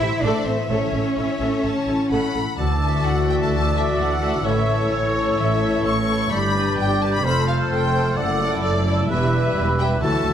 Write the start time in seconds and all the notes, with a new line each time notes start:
Already playing: A2 E3 E4 A4 C5 E5
0.01 A3 G4
0.07 E4
0.22 A1 A3 D4 A4 D5
0.39 C5
0.46 A1 A3 C4 A4 C5
0.54 E4
0.59 B3 B4
0.70 A1 A2 A3 C#4 A4 C#5
0.85 E3
0.92 A1 A3 A4
1.02 E4
1.17 A1 A3 E4 A4 E5
1.33 C#5
1.40 A1 A3 A4
1.49 E4
1.64 A1 A2 A3 A4 A5
1.80 E3
1.88 A1 A3 E4
1.96 E4
2.11 A1 A3 A4 F#5 B5
2.28 C#5
2.35 A1 A3 A4
2.43 E4
2.58 D2 D3 E3 F#4 D5 A5 E6
2.82 A3 F#4 A4 D5 E5
3.05 D2 E4 F#5
3.28 A3 F#4 A4 E5 G5
3.42 A5
3.51 D2 D4 A5
3.74 A3 F#4 A4 D5 E5
3.98 D2 F#5
4.21 A3 F#4 A4 D5 E5
4.43 A1 A2 A3 E4 A4 C#5 E5
4.67 A3 E4 A4 C#5
4.90 A1 A2 E4 C#5
5.14 A3 E4 A4 C#5
5.38 A1 A2 E3 E5
5.62 A3 E4 A4 C#5
5.84 A1 A2 E4 C#6
6.08 A3 E4 A4 C#5
6.31 G1 G2 G3 D4 G4 D5 B5 G6
6.53 D4 G4 B4
6.76 G1 G2 G4 G5
7.00 D4 G4 B4 D5 A5
7.14 B5
7.23 F1 F2 A3 F4 A4 C5 B5 F6
7.47 A3 A4 C5 F5
7.70 F1 F2 A4 G5
7.93 A3 A4 C5
8.17 F#1 F#2 E4 D5 F#5 E6
8.39 A3 E4 A4 D5 E5
8.62 F#1 F#2 A4 D5
8.85 A3 E4 A4 D5 E5
9.08 E1 E2 E3 G3 E4 G4 B4 E5
9.31 G3 E4 B4 E5
9.56 E1 E2 G4
9.79 G3 E4 B4 E5 G5
10.01 D2 D3 E3 F#3 E4 F#4 A4 E5 A5 E6
10.24 D2 F#3 E5